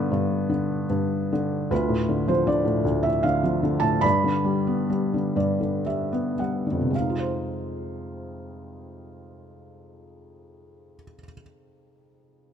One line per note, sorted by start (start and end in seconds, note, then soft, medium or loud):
0.00 0.11 G2 medium
0.00 0.49 D3 soft
0.00 0.86 B3 medium
0.11 0.88 G2 soft
0.49 1.31 D3 soft
0.90 1.68 G2 soft
1.32 1.70 D3 soft
1.71 2.83 D2 soft
1.71 2.82 F4 soft
1.71 2.30 B4 soft
1.89 2.63 A2 soft
2.09 2.45 D3 soft
2.27 3.42 F3 soft
2.27 2.48 C5 soft
2.47 3.22 D3 soft
2.47 3.06 D5 medium
2.65 3.04 A2 soft
2.85 4.00 D2 soft
3.03 3.80 A2 soft
3.03 3.24 E5 medium
3.23 3.61 D3 soft
3.23 3.85 F5 medium
3.43 4.02 F3 soft
3.63 4.02 D3 soft
3.80 4.02 A2 soft
3.80 4.03 A5 medium
4.01 5.35 G2 soft
4.01 5.35 D5 soft
4.01 5.80 B5 medium
4.24 5.12 D3 soft
4.45 4.88 G3 soft
4.67 6.11 B3 soft
4.90 5.85 G3 soft
5.14 5.59 D3 soft
5.36 6.90 G2 soft
5.36 5.82 D5 soft
5.61 6.65 D3 soft
5.86 6.38 G3 soft
5.86 6.35 E5 soft
6.12 6.92 B3 soft
6.39 6.93 G3 soft
6.39 6.91 F#5 soft
6.67 6.94 D3 soft
6.71 10.94 F2 soft
6.81 11.03 C3 soft
6.90 11.13 G#3 soft
6.95 11.18 F5 soft
7.00 11.23 D#4 soft
7.09 11.32 F4 soft
7.20 11.42 C5 soft